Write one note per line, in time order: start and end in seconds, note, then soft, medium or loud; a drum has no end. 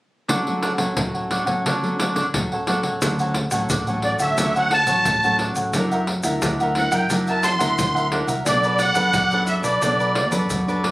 0.28 0.94 D3 medium
0.28 0.39 F#3 soft
0.28 0.40 A3 soft
0.28 0.40 C#4 medium
0.28 0.61 D4 medium
0.28 0.61 A4 medium
0.28 0.62 C#5 medium
0.28 0.62 F#5 medium
0.28 pandeiro medium
0.28 surdo soft
0.47 0.75 F#3 soft
0.47 0.75 A3 soft
0.47 0.76 C#4 medium
0.47 pandeiro soft
0.62 0.72 D4 medium
0.62 0.72 A4 medium
0.62 0.72 C#5 medium
0.62 0.72 F#5 medium
0.62 pandeiro medium
0.78 0.91 F#3 medium
0.78 0.91 A3 soft
0.78 0.91 C#4 medium
0.78 1.13 A4 soft
0.78 1.13 C#5 soft
0.78 1.12 F#5 soft
0.78 pandeiro soft
0.78 surdo soft
0.97 1.62 A2 medium
0.97 1.26 F#3 soft
0.97 1.26 A3 soft
0.97 1.26 C#4 soft
0.97 pandeiro medium
0.97 surdo medium
1.14 1.30 A4 soft
1.14 1.30 C#5 soft
1.14 1.30 F#5 soft
1.14 pandeiro soft
1.30 1.41 F#3 soft
1.30 1.41 A3 soft
1.30 1.42 C#4 soft
1.30 1.47 D4 soft
1.30 1.47 A4 medium
1.30 1.46 C#5 medium
1.30 1.45 F#5 medium
1.30 pandeiro medium
1.46 1.77 F#3 soft
1.46 1.77 A3 soft
1.46 1.77 C#4 medium
1.46 1.64 A4 soft
1.46 1.64 C#5 soft
1.46 1.63 F#5 soft
1.46 pandeiro soft
1.46 surdo soft
1.65 2.30 D3 medium
1.65 1.98 D4 medium
1.65 1.98 A4 medium
1.65 1.99 C#5 medium
1.65 1.99 F#5 medium
1.65 pandeiro medium
1.65 surdo medium
1.83 1.94 F#3 medium
1.83 1.95 A3 medium
1.83 1.95 C#4 medium
1.83 pandeiro soft
1.98 2.19 F#3 soft
1.98 2.19 A3 soft
1.98 2.20 C#4 medium
1.98 2.14 D4 soft
1.98 2.15 A4 soft
1.98 2.15 C#5 soft
1.98 2.15 F#5 soft
1.98 pandeiro medium
2.15 2.25 D4 medium
2.15 2.25 A4 medium
2.15 2.26 C#5 medium
2.15 2.26 F#5 medium
2.15 pandeiro soft
2.15 surdo soft
2.34 2.99 A2 medium
2.34 2.54 F#3 soft
2.34 2.54 A3 soft
2.34 2.55 C#4 soft
2.34 pandeiro medium
2.34 surdo medium
2.52 2.67 A4 soft
2.52 2.68 C#5 soft
2.52 2.67 F#5 soft
2.52 pandeiro soft
2.67 2.88 F#3 medium
2.67 2.88 A3 medium
2.67 2.88 C#4 medium
2.67 2.83 D4 medium
2.67 2.84 A4 medium
2.67 2.84 C#5 medium
2.67 2.83 F#5 medium
2.67 pandeiro medium
2.83 3.01 A4 soft
2.83 3.01 C#5 soft
2.83 3.00 F#5 soft
2.83 pandeiro soft
2.83 surdo soft
3.02 3.46 D2 medium
3.02 3.67 D3 soft
3.02 3.34 F#3 soft
3.02 3.35 A3 soft
3.02 3.35 C#4 medium
3.02 3.18 D4 soft
3.02 3.19 A4 soft
3.02 3.19 C#5 soft
3.02 3.19 F#5 medium
3.02 pandeiro medium
3.02 shaker medium
3.02 surdo medium
3.19 3.36 A4 soft
3.19 3.36 C#5 soft
3.19 3.35 F#5 medium
3.19 pandeiro soft
3.19 shaker soft
3.34 muted cavaquinho stroke soft
3.34 pandeiro medium
3.34 surdo soft
3.51 3.67 A1 medium
3.51 3.82 F#3 soft
3.51 3.82 A3 soft
3.51 3.82 C#4 medium
3.51 3.69 A4 medium
3.51 3.69 C#5 medium
3.51 3.68 F#5 medium
3.51 pandeiro soft
3.51 shaker medium
3.51 surdo soft
3.70 4.14 A1 medium
3.70 4.35 A2 soft
3.70 3.86 D4 soft
3.70 3.86 A4 soft
3.70 3.87 C#5 medium
3.70 3.86 F#5 medium
3.70 pandeiro medium
3.70 shaker medium
3.70 surdo medium
3.87 4.34 F#3 medium
3.87 4.34 A3 soft
3.87 4.34 C#4 medium
3.87 4.21 A4 medium
3.87 4.20 C#5 medium
3.87 4.19 F#5 medium
3.87 pandeiro soft
3.87 shaker soft
4.02 4.12 D5 medium
4.02 pandeiro soft
4.19 4.35 D2 medium
4.19 4.37 A4 soft
4.19 4.37 C#5 medium
4.19 4.56 E5 medium
4.19 4.36 F#5 medium
4.19 pandeiro soft
4.19 shaker medium
4.19 surdo soft
4.38 4.88 D2 medium
4.38 5.03 D3 soft
4.38 4.70 F#3 soft
4.38 4.71 A3 medium
4.38 4.71 C#4 medium
4.38 4.54 D4 soft
4.38 4.55 A4 soft
4.38 4.55 C#5 soft
4.38 4.55 F#5 soft
4.38 pandeiro medium
4.38 shaker medium
4.38 surdo medium
4.56 4.70 A4 soft
4.56 4.71 C#5 medium
4.56 4.71 F#5 medium
4.56 4.73 F#5 medium
4.56 pandeiro soft
4.56 shaker soft
4.71 5.37 A5 loud
4.71 muted cavaquinho stroke soft
4.71 pandeiro medium
4.87 5.03 A1 medium
4.87 5.18 F#3 medium
4.87 5.18 A3 medium
4.87 5.18 C#4 medium
4.87 5.22 A4 soft
4.87 5.22 C#5 medium
4.87 5.21 F#5 medium
4.87 pandeiro medium
4.87 shaker medium
4.87 surdo soft
5.05 5.50 A1 medium
5.05 5.72 A2 soft
5.05 pandeiro medium
5.05 shaker medium
5.05 surdo medium
5.23 5.70 F#3 medium
5.23 5.70 A3 medium
5.23 5.70 C#4 medium
5.23 5.39 A4 medium
5.23 5.39 C#5 medium
5.23 5.40 F#5 medium
5.23 pandeiro soft
5.23 shaker soft
5.39 5.56 D4 medium
5.39 5.56 A4 medium
5.39 5.56 C#5 medium
5.39 5.55 F#5 medium
5.39 pandeiro medium
5.56 5.71 A1 medium
5.56 5.74 A4 soft
5.56 5.73 C#5 soft
5.56 5.73 F#5 soft
5.56 pandeiro soft
5.56 shaker medium
5.56 surdo soft
5.73 6.18 F#2 loud
5.73 6.39 F#3 soft
5.73 5.90 D4 soft
5.73 6.07 D4 soft
5.73 6.07 E4 soft
5.73 5.90 A#4 soft
5.73 6.07 A#4 medium
5.73 5.91 E5 soft
5.73 5.90 F#5 soft
5.73 pandeiro medium
5.73 shaker medium
5.73 surdo medium
5.92 6.07 A#4 medium
5.92 6.07 E5 soft
5.92 6.07 F#5 medium
5.92 pandeiro soft
5.92 shaker soft
6.07 muted cavaquinho stroke soft
6.07 pandeiro medium
6.07 surdo soft
6.23 6.39 D2 medium
6.23 6.70 D4 medium
6.23 6.71 E4 medium
6.23 6.71 A#4 medium
6.23 6.41 A#4 soft
6.23 6.41 E5 medium
6.23 6.41 F#5 medium
6.23 pandeiro medium
6.23 shaker medium
6.23 surdo soft
6.42 6.86 D2 medium
6.42 7.07 F#3 soft
6.42 6.59 D4 soft
6.42 6.59 A#4 soft
6.42 6.59 E5 medium
6.42 6.59 F#5 soft
6.42 pandeiro medium
6.42 shaker medium
6.42 surdo medium
6.60 6.92 A#4 soft
6.60 6.91 E5 medium
6.60 6.90 F#5 medium
6.60 pandeiro soft
6.60 shaker soft
6.75 7.05 D4 medium
6.75 7.05 E4 medium
6.75 7.05 A#4 medium
6.75 6.94 F#5 medium
6.75 pandeiro medium
6.92 7.07 F#2 medium
6.92 7.09 A#4 soft
6.92 7.09 E5 medium
6.92 7.08 F#5 medium
6.92 7.09 G5 medium
6.92 pandeiro soft
6.92 shaker medium
6.92 surdo soft
7.10 7.60 F#2 medium
7.10 7.75 F#3 medium
7.10 7.26 D4 soft
7.10 7.56 D4 medium
7.10 7.56 E4 medium
7.10 7.57 A#4 medium
7.10 7.27 A#4 soft
7.10 7.27 E5 soft
7.10 7.27 F#5 soft
7.10 pandeiro medium
7.10 shaker medium
7.10 surdo medium
7.27 7.43 A#4 soft
7.27 7.44 E5 medium
7.27 7.44 F#5 medium
7.27 7.46 A5 medium
7.27 pandeiro soft
7.27 shaker soft
7.43 8.08 C6 medium
7.43 muted cavaquinho stroke soft
7.43 pandeiro medium
7.43 shaker medium
7.59 7.75 D2 medium
7.59 8.07 D4 medium
7.59 8.07 E4 medium
7.59 8.07 A#4 medium
7.59 7.94 A#4 medium
7.59 7.94 E5 medium
7.59 7.93 F#5 medium
7.59 pandeiro medium
7.59 shaker medium
7.59 surdo soft
7.78 8.22 D2 medium
7.78 8.43 F#3 soft
7.78 pandeiro medium
7.78 shaker medium
7.78 surdo medium
7.95 8.11 A#4 soft
7.95 8.12 E5 medium
7.95 8.11 F#5 medium
7.95 pandeiro soft
7.95 shaker soft
8.12 8.28 D4 medium
8.12 8.33 D4 medium
8.12 8.33 E4 medium
8.12 8.28 A#4 medium
8.12 8.33 A#4 medium
8.12 8.28 E5 medium
8.12 8.27 F#5 medium
8.12 pandeiro medium
8.27 8.43 C2 medium
8.27 8.45 A#4 soft
8.27 8.45 E5 soft
8.27 8.44 F#5 soft
8.27 pandeiro soft
8.27 shaker medium
8.27 surdo soft
8.46 8.90 B1 medium
8.46 9.12 B3 medium
8.46 8.63 D4 soft
8.46 8.79 D4 medium
8.46 8.63 A4 soft
8.46 8.80 A4 soft
8.46 8.63 B4 medium
8.46 8.81 D5 medium
8.46 8.62 D5 medium
8.46 pandeiro medium
8.46 shaker medium
8.46 surdo medium
8.64 8.79 A4 medium
8.64 8.79 B4 medium
8.64 8.79 D5 medium
8.64 pandeiro soft
8.64 shaker soft
8.79 9.44 F#5 loud
8.79 muted cavaquinho stroke soft
8.79 pandeiro medium
8.79 shaker medium
8.79 surdo soft
8.95 9.11 F#2 medium
8.95 9.25 D4 medium
8.95 9.26 A4 medium
8.95 9.13 A4 medium
8.95 9.13 B4 medium
8.95 9.26 C#5 medium
8.95 9.12 D5 medium
8.95 pandeiro medium
8.95 shaker medium
8.95 surdo soft
9.13 9.58 F#2 medium
9.13 9.79 F#3 medium
9.13 9.30 D4 soft
9.13 9.31 A4 soft
9.13 9.31 B4 soft
9.13 9.31 D5 medium
9.13 pandeiro medium
9.13 shaker medium
9.13 surdo medium
9.31 9.78 D4 medium
9.31 9.78 A4 medium
9.31 9.63 A4 soft
9.31 9.63 B4 soft
9.31 9.78 C#5 medium
9.31 9.62 D5 medium
9.31 pandeiro soft
9.31 shaker soft
9.47 9.55 E5 medium
9.47 pandeiro soft
9.47 shaker medium
9.63 9.79 B1 medium
9.63 9.81 A4 medium
9.63 9.81 B4 medium
9.63 9.80 D5 medium
9.63 10.29 D5 medium
9.63 pandeiro soft
9.63 shaker medium
9.63 surdo soft
9.82 10.31 B1 medium
9.82 10.48 B3 soft
9.82 9.98 D4 soft
9.82 10.15 D4 medium
9.82 9.98 A4 soft
9.82 10.15 A4 soft
9.82 9.99 B4 soft
9.82 9.98 D5 soft
9.82 pandeiro medium
9.82 shaker medium
9.82 surdo medium
9.99 10.14 A4 soft
9.99 10.15 B4 medium
9.99 10.15 D5 medium
9.99 pandeiro soft
9.99 shaker soft
10.15 muted cavaquinho stroke soft
10.15 pandeiro medium
10.31 10.47 F#2 medium
10.31 10.61 D4 medium
10.31 10.62 A4 medium
10.31 10.66 A4 medium
10.31 10.65 B4 medium
10.31 10.62 C#5 medium
10.31 10.65 D5 medium
10.31 pandeiro medium
10.31 shaker medium
10.31 surdo soft
10.50 10.91 F#2 medium
10.50 10.91 F#3 soft
10.50 pandeiro medium
10.50 shaker medium
10.50 surdo medium
10.68 10.91 D4 medium
10.68 10.91 A4 medium
10.68 10.83 A4 soft
10.68 10.84 B4 medium
10.68 10.91 C#5 medium
10.68 10.84 D5 medium
10.68 pandeiro soft
10.68 shaker soft
10.83 10.91 D4 medium
10.83 10.91 A4 medium
10.83 10.91 B4 medium
10.83 10.91 D5 medium
10.83 pandeiro medium